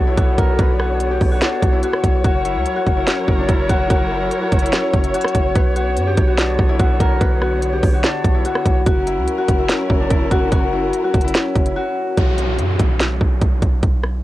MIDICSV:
0, 0, Header, 1, 6, 480
1, 0, Start_track
1, 0, Key_signature, 2, "minor"
1, 0, Tempo, 413793
1, 683, Time_signature, 4, 2, 24, 8
1, 16510, End_track
2, 0, Start_track
2, 0, Title_t, "Harp"
2, 0, Program_c, 0, 46
2, 0, Note_on_c, 0, 62, 85
2, 0, Note_on_c, 0, 66, 81
2, 0, Note_on_c, 0, 71, 82
2, 81, Note_on_c, 0, 64, 89
2, 200, Note_off_c, 0, 66, 0
2, 205, Note_on_c, 0, 66, 84
2, 444, Note_on_c, 0, 70, 93
2, 514, Note_off_c, 0, 71, 0
2, 685, Note_on_c, 0, 71, 97
2, 754, Note_off_c, 0, 70, 0
2, 917, Note_off_c, 0, 66, 0
2, 921, Note_on_c, 0, 66, 82
2, 1287, Note_on_c, 0, 67, 76
2, 1357, Note_off_c, 0, 66, 0
2, 1525, Note_on_c, 0, 66, 81
2, 1595, Note_off_c, 0, 67, 0
2, 1637, Note_off_c, 0, 62, 0
2, 1642, Note_on_c, 0, 62, 90
2, 1996, Note_off_c, 0, 64, 0
2, 2001, Note_on_c, 0, 64, 75
2, 2123, Note_off_c, 0, 66, 0
2, 2128, Note_on_c, 0, 66, 80
2, 2601, Note_off_c, 0, 66, 0
2, 2606, Note_on_c, 0, 66, 88
2, 2834, Note_off_c, 0, 64, 0
2, 2839, Note_on_c, 0, 64, 91
2, 3061, Note_off_c, 0, 71, 0
2, 3196, Note_off_c, 0, 66, 0
2, 3201, Note_on_c, 0, 66, 81
2, 3435, Note_off_c, 0, 64, 0
2, 3439, Note_on_c, 0, 64, 86
2, 3564, Note_on_c, 0, 61, 83
2, 3633, Note_off_c, 0, 62, 0
2, 3923, Note_on_c, 0, 62, 76
2, 3993, Note_off_c, 0, 61, 0
2, 4041, Note_off_c, 0, 64, 0
2, 4045, Note_on_c, 0, 64, 87
2, 4280, Note_off_c, 0, 66, 0
2, 4285, Note_on_c, 0, 66, 100
2, 4519, Note_off_c, 0, 66, 0
2, 4523, Note_on_c, 0, 66, 96
2, 4757, Note_off_c, 0, 64, 0
2, 4762, Note_on_c, 0, 64, 87
2, 5119, Note_off_c, 0, 66, 0
2, 5124, Note_on_c, 0, 66, 77
2, 5356, Note_off_c, 0, 64, 0
2, 5360, Note_on_c, 0, 64, 86
2, 5483, Note_on_c, 0, 61, 81
2, 5553, Note_off_c, 0, 62, 0
2, 5840, Note_off_c, 0, 64, 0
2, 5844, Note_on_c, 0, 64, 70
2, 5957, Note_off_c, 0, 66, 0
2, 5961, Note_on_c, 0, 66, 87
2, 6442, Note_on_c, 0, 71, 80
2, 6676, Note_off_c, 0, 66, 0
2, 6681, Note_on_c, 0, 66, 87
2, 7042, Note_on_c, 0, 67, 81
2, 7112, Note_off_c, 0, 66, 0
2, 7280, Note_on_c, 0, 66, 84
2, 7349, Note_off_c, 0, 67, 0
2, 7405, Note_on_c, 0, 62, 86
2, 7474, Note_off_c, 0, 61, 0
2, 7755, Note_off_c, 0, 64, 0
2, 7760, Note_on_c, 0, 64, 87
2, 7878, Note_off_c, 0, 66, 0
2, 7883, Note_on_c, 0, 66, 80
2, 8123, Note_on_c, 0, 70, 93
2, 8192, Note_off_c, 0, 71, 0
2, 8363, Note_on_c, 0, 71, 97
2, 8433, Note_off_c, 0, 70, 0
2, 8595, Note_off_c, 0, 66, 0
2, 8600, Note_on_c, 0, 66, 81
2, 8964, Note_on_c, 0, 67, 76
2, 9033, Note_off_c, 0, 66, 0
2, 9204, Note_on_c, 0, 66, 80
2, 9273, Note_off_c, 0, 67, 0
2, 9319, Note_off_c, 0, 62, 0
2, 9324, Note_on_c, 0, 62, 93
2, 9677, Note_off_c, 0, 64, 0
2, 9681, Note_on_c, 0, 64, 75
2, 9804, Note_off_c, 0, 66, 0
2, 9808, Note_on_c, 0, 66, 83
2, 10281, Note_off_c, 0, 66, 0
2, 10286, Note_on_c, 0, 66, 87
2, 10515, Note_off_c, 0, 64, 0
2, 10519, Note_on_c, 0, 64, 93
2, 10740, Note_off_c, 0, 71, 0
2, 10877, Note_off_c, 0, 66, 0
2, 10881, Note_on_c, 0, 66, 85
2, 11116, Note_off_c, 0, 64, 0
2, 11120, Note_on_c, 0, 64, 85
2, 11247, Note_on_c, 0, 61, 82
2, 11316, Note_off_c, 0, 62, 0
2, 11603, Note_on_c, 0, 62, 76
2, 11672, Note_off_c, 0, 61, 0
2, 11721, Note_off_c, 0, 64, 0
2, 11726, Note_on_c, 0, 64, 85
2, 11961, Note_off_c, 0, 66, 0
2, 11966, Note_on_c, 0, 66, 95
2, 12201, Note_off_c, 0, 66, 0
2, 12205, Note_on_c, 0, 66, 94
2, 12440, Note_off_c, 0, 64, 0
2, 12445, Note_on_c, 0, 64, 82
2, 12800, Note_off_c, 0, 66, 0
2, 12805, Note_on_c, 0, 66, 72
2, 13036, Note_off_c, 0, 64, 0
2, 13041, Note_on_c, 0, 64, 87
2, 13163, Note_on_c, 0, 61, 81
2, 13232, Note_off_c, 0, 62, 0
2, 13519, Note_off_c, 0, 64, 0
2, 13524, Note_on_c, 0, 64, 71
2, 13637, Note_off_c, 0, 66, 0
2, 13642, Note_on_c, 0, 66, 91
2, 16469, Note_off_c, 0, 66, 0
2, 16510, Note_off_c, 0, 61, 0
2, 16510, Note_off_c, 0, 64, 0
2, 16510, End_track
3, 0, Start_track
3, 0, Title_t, "String section"
3, 0, Program_c, 1, 48
3, 0, Note_on_c, 1, 50, 82
3, 0, Note_on_c, 1, 59, 72
3, 0, Note_on_c, 1, 73, 89
3, 2565, Note_off_c, 1, 50, 0
3, 2565, Note_off_c, 1, 59, 0
3, 2602, Note_on_c, 1, 70, 90
3, 2603, Note_on_c, 1, 54, 83
3, 2603, Note_on_c, 1, 64, 75
3, 6404, Note_off_c, 1, 54, 0
3, 6404, Note_off_c, 1, 70, 0
3, 6405, Note_off_c, 1, 64, 0
3, 6444, Note_on_c, 1, 50, 79
3, 6445, Note_on_c, 1, 59, 74
3, 10237, Note_off_c, 1, 73, 0
3, 10245, Note_off_c, 1, 50, 0
3, 10245, Note_off_c, 1, 59, 0
3, 10284, Note_on_c, 1, 54, 81
3, 10284, Note_on_c, 1, 61, 72
3, 10284, Note_on_c, 1, 64, 72
3, 10284, Note_on_c, 1, 70, 89
3, 14085, Note_off_c, 1, 54, 0
3, 14085, Note_off_c, 1, 61, 0
3, 14085, Note_off_c, 1, 64, 0
3, 14085, Note_off_c, 1, 70, 0
3, 16510, End_track
4, 0, Start_track
4, 0, Title_t, "808-style bass"
4, 0, Program_c, 2, 38
4, 0, Note_on_c, 2, 35, 109
4, 194, Note_off_c, 2, 35, 0
4, 203, Note_on_c, 2, 35, 102
4, 434, Note_off_c, 2, 35, 0
4, 443, Note_on_c, 2, 35, 109
4, 673, Note_off_c, 2, 35, 0
4, 684, Note_on_c, 2, 35, 111
4, 1375, Note_off_c, 2, 35, 0
4, 1403, Note_on_c, 2, 35, 110
4, 1634, Note_off_c, 2, 35, 0
4, 1883, Note_on_c, 2, 35, 106
4, 2114, Note_off_c, 2, 35, 0
4, 2362, Note_on_c, 2, 35, 105
4, 2593, Note_off_c, 2, 35, 0
4, 2603, Note_on_c, 2, 30, 105
4, 2963, Note_on_c, 2, 37, 100
4, 2980, Note_off_c, 2, 30, 0
4, 3077, Note_off_c, 2, 37, 0
4, 3324, Note_on_c, 2, 30, 109
4, 3554, Note_off_c, 2, 30, 0
4, 3803, Note_on_c, 2, 30, 108
4, 4034, Note_off_c, 2, 30, 0
4, 4044, Note_on_c, 2, 30, 102
4, 4274, Note_off_c, 2, 30, 0
4, 4283, Note_on_c, 2, 30, 106
4, 4513, Note_off_c, 2, 30, 0
4, 4524, Note_on_c, 2, 30, 111
4, 4984, Note_off_c, 2, 30, 0
4, 5243, Note_on_c, 2, 30, 108
4, 5474, Note_off_c, 2, 30, 0
4, 5724, Note_on_c, 2, 30, 107
4, 5954, Note_off_c, 2, 30, 0
4, 6203, Note_on_c, 2, 30, 106
4, 6433, Note_off_c, 2, 30, 0
4, 6443, Note_on_c, 2, 35, 107
4, 6923, Note_on_c, 2, 42, 99
4, 6940, Note_off_c, 2, 35, 0
4, 7151, Note_off_c, 2, 42, 0
4, 7163, Note_on_c, 2, 35, 111
4, 7624, Note_off_c, 2, 35, 0
4, 7643, Note_on_c, 2, 35, 107
4, 7874, Note_off_c, 2, 35, 0
4, 7883, Note_on_c, 2, 35, 107
4, 8113, Note_off_c, 2, 35, 0
4, 8122, Note_on_c, 2, 35, 104
4, 8353, Note_off_c, 2, 35, 0
4, 8363, Note_on_c, 2, 35, 108
4, 9054, Note_off_c, 2, 35, 0
4, 9083, Note_on_c, 2, 35, 109
4, 9313, Note_off_c, 2, 35, 0
4, 9564, Note_on_c, 2, 35, 107
4, 9794, Note_off_c, 2, 35, 0
4, 10042, Note_on_c, 2, 35, 105
4, 10273, Note_off_c, 2, 35, 0
4, 10283, Note_on_c, 2, 30, 107
4, 10643, Note_on_c, 2, 37, 99
4, 10660, Note_off_c, 2, 30, 0
4, 10757, Note_off_c, 2, 37, 0
4, 11003, Note_on_c, 2, 30, 104
4, 11234, Note_off_c, 2, 30, 0
4, 11484, Note_on_c, 2, 30, 106
4, 11714, Note_off_c, 2, 30, 0
4, 11723, Note_on_c, 2, 30, 103
4, 11954, Note_off_c, 2, 30, 0
4, 11962, Note_on_c, 2, 30, 103
4, 12193, Note_off_c, 2, 30, 0
4, 12203, Note_on_c, 2, 30, 112
4, 12664, Note_off_c, 2, 30, 0
4, 12923, Note_on_c, 2, 30, 110
4, 13153, Note_off_c, 2, 30, 0
4, 13403, Note_on_c, 2, 30, 106
4, 13643, Note_off_c, 2, 30, 0
4, 14122, Note_on_c, 2, 35, 106
4, 14602, Note_on_c, 2, 42, 100
4, 14619, Note_off_c, 2, 35, 0
4, 14830, Note_off_c, 2, 42, 0
4, 14843, Note_on_c, 2, 35, 106
4, 15304, Note_off_c, 2, 35, 0
4, 15323, Note_on_c, 2, 35, 104
4, 15553, Note_off_c, 2, 35, 0
4, 15562, Note_on_c, 2, 35, 99
4, 15793, Note_off_c, 2, 35, 0
4, 15801, Note_on_c, 2, 35, 105
4, 16033, Note_off_c, 2, 35, 0
4, 16042, Note_on_c, 2, 35, 110
4, 16510, Note_off_c, 2, 35, 0
4, 16510, End_track
5, 0, Start_track
5, 0, Title_t, "Downlifter"
5, 0, Program_c, 3, 103
5, 14123, Note_on_c, 3, 60, 85
5, 16510, Note_off_c, 3, 60, 0
5, 16510, End_track
6, 0, Start_track
6, 0, Title_t, "Drums"
6, 203, Note_on_c, 9, 36, 108
6, 203, Note_on_c, 9, 42, 76
6, 319, Note_off_c, 9, 36, 0
6, 319, Note_off_c, 9, 42, 0
6, 443, Note_on_c, 9, 36, 90
6, 443, Note_on_c, 9, 42, 75
6, 559, Note_off_c, 9, 36, 0
6, 559, Note_off_c, 9, 42, 0
6, 682, Note_on_c, 9, 42, 73
6, 683, Note_on_c, 9, 36, 116
6, 798, Note_off_c, 9, 42, 0
6, 799, Note_off_c, 9, 36, 0
6, 923, Note_on_c, 9, 37, 70
6, 1039, Note_off_c, 9, 37, 0
6, 1161, Note_on_c, 9, 42, 73
6, 1277, Note_off_c, 9, 42, 0
6, 1402, Note_on_c, 9, 46, 62
6, 1403, Note_on_c, 9, 36, 97
6, 1518, Note_off_c, 9, 46, 0
6, 1519, Note_off_c, 9, 36, 0
6, 1642, Note_on_c, 9, 38, 120
6, 1644, Note_on_c, 9, 42, 91
6, 1758, Note_off_c, 9, 38, 0
6, 1760, Note_off_c, 9, 42, 0
6, 1883, Note_on_c, 9, 36, 101
6, 1886, Note_on_c, 9, 42, 78
6, 1999, Note_off_c, 9, 36, 0
6, 2002, Note_off_c, 9, 42, 0
6, 2122, Note_on_c, 9, 42, 80
6, 2238, Note_off_c, 9, 42, 0
6, 2244, Note_on_c, 9, 37, 92
6, 2360, Note_off_c, 9, 37, 0
6, 2363, Note_on_c, 9, 36, 87
6, 2363, Note_on_c, 9, 42, 79
6, 2479, Note_off_c, 9, 36, 0
6, 2479, Note_off_c, 9, 42, 0
6, 2603, Note_on_c, 9, 36, 116
6, 2603, Note_on_c, 9, 42, 71
6, 2719, Note_off_c, 9, 36, 0
6, 2719, Note_off_c, 9, 42, 0
6, 2843, Note_on_c, 9, 42, 74
6, 2959, Note_off_c, 9, 42, 0
6, 3082, Note_on_c, 9, 42, 74
6, 3198, Note_off_c, 9, 42, 0
6, 3323, Note_on_c, 9, 42, 78
6, 3324, Note_on_c, 9, 36, 97
6, 3439, Note_off_c, 9, 42, 0
6, 3440, Note_off_c, 9, 36, 0
6, 3564, Note_on_c, 9, 38, 118
6, 3566, Note_on_c, 9, 42, 89
6, 3680, Note_off_c, 9, 38, 0
6, 3682, Note_off_c, 9, 42, 0
6, 3804, Note_on_c, 9, 36, 100
6, 3920, Note_off_c, 9, 36, 0
6, 4043, Note_on_c, 9, 36, 114
6, 4043, Note_on_c, 9, 42, 76
6, 4159, Note_off_c, 9, 36, 0
6, 4159, Note_off_c, 9, 42, 0
6, 4283, Note_on_c, 9, 36, 90
6, 4284, Note_on_c, 9, 42, 78
6, 4399, Note_off_c, 9, 36, 0
6, 4400, Note_off_c, 9, 42, 0
6, 4524, Note_on_c, 9, 36, 116
6, 4524, Note_on_c, 9, 42, 71
6, 4640, Note_off_c, 9, 36, 0
6, 4640, Note_off_c, 9, 42, 0
6, 5002, Note_on_c, 9, 42, 75
6, 5118, Note_off_c, 9, 42, 0
6, 5242, Note_on_c, 9, 46, 63
6, 5243, Note_on_c, 9, 42, 52
6, 5244, Note_on_c, 9, 36, 99
6, 5324, Note_off_c, 9, 42, 0
6, 5324, Note_on_c, 9, 42, 65
6, 5358, Note_off_c, 9, 46, 0
6, 5360, Note_off_c, 9, 36, 0
6, 5403, Note_off_c, 9, 42, 0
6, 5403, Note_on_c, 9, 42, 82
6, 5484, Note_on_c, 9, 38, 116
6, 5486, Note_off_c, 9, 42, 0
6, 5486, Note_on_c, 9, 42, 89
6, 5600, Note_off_c, 9, 38, 0
6, 5602, Note_off_c, 9, 42, 0
6, 5724, Note_on_c, 9, 36, 99
6, 5724, Note_on_c, 9, 42, 48
6, 5840, Note_off_c, 9, 36, 0
6, 5840, Note_off_c, 9, 42, 0
6, 5844, Note_on_c, 9, 42, 77
6, 5960, Note_off_c, 9, 42, 0
6, 5964, Note_on_c, 9, 42, 80
6, 6044, Note_off_c, 9, 42, 0
6, 6044, Note_on_c, 9, 42, 62
6, 6084, Note_on_c, 9, 37, 96
6, 6124, Note_off_c, 9, 42, 0
6, 6124, Note_on_c, 9, 42, 45
6, 6200, Note_off_c, 9, 37, 0
6, 6202, Note_on_c, 9, 36, 88
6, 6203, Note_off_c, 9, 42, 0
6, 6203, Note_on_c, 9, 42, 78
6, 6318, Note_off_c, 9, 36, 0
6, 6319, Note_off_c, 9, 42, 0
6, 6443, Note_on_c, 9, 36, 121
6, 6443, Note_on_c, 9, 42, 72
6, 6559, Note_off_c, 9, 36, 0
6, 6559, Note_off_c, 9, 42, 0
6, 6682, Note_on_c, 9, 42, 73
6, 6798, Note_off_c, 9, 42, 0
6, 6922, Note_on_c, 9, 42, 76
6, 7038, Note_off_c, 9, 42, 0
6, 7162, Note_on_c, 9, 42, 81
6, 7163, Note_on_c, 9, 36, 96
6, 7278, Note_off_c, 9, 42, 0
6, 7279, Note_off_c, 9, 36, 0
6, 7403, Note_on_c, 9, 38, 121
6, 7406, Note_on_c, 9, 42, 92
6, 7519, Note_off_c, 9, 38, 0
6, 7522, Note_off_c, 9, 42, 0
6, 7643, Note_on_c, 9, 36, 98
6, 7759, Note_off_c, 9, 36, 0
6, 7883, Note_on_c, 9, 36, 112
6, 7883, Note_on_c, 9, 42, 77
6, 7999, Note_off_c, 9, 36, 0
6, 7999, Note_off_c, 9, 42, 0
6, 8122, Note_on_c, 9, 36, 88
6, 8123, Note_on_c, 9, 42, 77
6, 8238, Note_off_c, 9, 36, 0
6, 8239, Note_off_c, 9, 42, 0
6, 8363, Note_on_c, 9, 36, 119
6, 8363, Note_on_c, 9, 42, 72
6, 8479, Note_off_c, 9, 36, 0
6, 8479, Note_off_c, 9, 42, 0
6, 8603, Note_on_c, 9, 37, 71
6, 8719, Note_off_c, 9, 37, 0
6, 8842, Note_on_c, 9, 42, 78
6, 8958, Note_off_c, 9, 42, 0
6, 9082, Note_on_c, 9, 46, 63
6, 9083, Note_on_c, 9, 36, 101
6, 9198, Note_off_c, 9, 46, 0
6, 9199, Note_off_c, 9, 36, 0
6, 9324, Note_on_c, 9, 38, 119
6, 9326, Note_on_c, 9, 42, 87
6, 9440, Note_off_c, 9, 38, 0
6, 9442, Note_off_c, 9, 42, 0
6, 9564, Note_on_c, 9, 36, 104
6, 9567, Note_on_c, 9, 42, 77
6, 9680, Note_off_c, 9, 36, 0
6, 9683, Note_off_c, 9, 42, 0
6, 9802, Note_on_c, 9, 42, 80
6, 9918, Note_off_c, 9, 42, 0
6, 9923, Note_on_c, 9, 37, 94
6, 10039, Note_off_c, 9, 37, 0
6, 10042, Note_on_c, 9, 36, 86
6, 10042, Note_on_c, 9, 42, 80
6, 10158, Note_off_c, 9, 36, 0
6, 10158, Note_off_c, 9, 42, 0
6, 10282, Note_on_c, 9, 42, 73
6, 10283, Note_on_c, 9, 36, 117
6, 10398, Note_off_c, 9, 42, 0
6, 10399, Note_off_c, 9, 36, 0
6, 10522, Note_on_c, 9, 42, 72
6, 10638, Note_off_c, 9, 42, 0
6, 10762, Note_on_c, 9, 42, 76
6, 10878, Note_off_c, 9, 42, 0
6, 11003, Note_on_c, 9, 36, 95
6, 11003, Note_on_c, 9, 42, 80
6, 11119, Note_off_c, 9, 36, 0
6, 11119, Note_off_c, 9, 42, 0
6, 11243, Note_on_c, 9, 38, 123
6, 11245, Note_on_c, 9, 42, 88
6, 11359, Note_off_c, 9, 38, 0
6, 11361, Note_off_c, 9, 42, 0
6, 11484, Note_on_c, 9, 36, 99
6, 11600, Note_off_c, 9, 36, 0
6, 11722, Note_on_c, 9, 42, 78
6, 11723, Note_on_c, 9, 36, 113
6, 11838, Note_off_c, 9, 42, 0
6, 11839, Note_off_c, 9, 36, 0
6, 11962, Note_on_c, 9, 36, 90
6, 11963, Note_on_c, 9, 42, 78
6, 12078, Note_off_c, 9, 36, 0
6, 12079, Note_off_c, 9, 42, 0
6, 12202, Note_on_c, 9, 42, 70
6, 12203, Note_on_c, 9, 36, 119
6, 12318, Note_off_c, 9, 42, 0
6, 12319, Note_off_c, 9, 36, 0
6, 12681, Note_on_c, 9, 42, 74
6, 12797, Note_off_c, 9, 42, 0
6, 12922, Note_on_c, 9, 46, 62
6, 12923, Note_on_c, 9, 36, 98
6, 12923, Note_on_c, 9, 42, 49
6, 13003, Note_off_c, 9, 42, 0
6, 13003, Note_on_c, 9, 42, 67
6, 13038, Note_off_c, 9, 46, 0
6, 13039, Note_off_c, 9, 36, 0
6, 13082, Note_off_c, 9, 42, 0
6, 13082, Note_on_c, 9, 42, 81
6, 13162, Note_on_c, 9, 38, 118
6, 13165, Note_off_c, 9, 42, 0
6, 13165, Note_on_c, 9, 42, 90
6, 13278, Note_off_c, 9, 38, 0
6, 13281, Note_off_c, 9, 42, 0
6, 13403, Note_on_c, 9, 36, 100
6, 13403, Note_on_c, 9, 42, 48
6, 13519, Note_off_c, 9, 36, 0
6, 13519, Note_off_c, 9, 42, 0
6, 13523, Note_on_c, 9, 42, 73
6, 13639, Note_off_c, 9, 42, 0
6, 14122, Note_on_c, 9, 36, 112
6, 14122, Note_on_c, 9, 42, 68
6, 14238, Note_off_c, 9, 36, 0
6, 14238, Note_off_c, 9, 42, 0
6, 14361, Note_on_c, 9, 42, 75
6, 14477, Note_off_c, 9, 42, 0
6, 14600, Note_on_c, 9, 42, 72
6, 14716, Note_off_c, 9, 42, 0
6, 14841, Note_on_c, 9, 42, 78
6, 14842, Note_on_c, 9, 36, 98
6, 14957, Note_off_c, 9, 42, 0
6, 14958, Note_off_c, 9, 36, 0
6, 15082, Note_on_c, 9, 38, 121
6, 15084, Note_on_c, 9, 42, 85
6, 15198, Note_off_c, 9, 38, 0
6, 15200, Note_off_c, 9, 42, 0
6, 15323, Note_on_c, 9, 36, 96
6, 15439, Note_off_c, 9, 36, 0
6, 15561, Note_on_c, 9, 42, 76
6, 15562, Note_on_c, 9, 36, 109
6, 15677, Note_off_c, 9, 42, 0
6, 15678, Note_off_c, 9, 36, 0
6, 15802, Note_on_c, 9, 36, 86
6, 15802, Note_on_c, 9, 42, 79
6, 15918, Note_off_c, 9, 36, 0
6, 15918, Note_off_c, 9, 42, 0
6, 16042, Note_on_c, 9, 36, 115
6, 16042, Note_on_c, 9, 42, 70
6, 16158, Note_off_c, 9, 36, 0
6, 16158, Note_off_c, 9, 42, 0
6, 16282, Note_on_c, 9, 37, 69
6, 16398, Note_off_c, 9, 37, 0
6, 16510, End_track
0, 0, End_of_file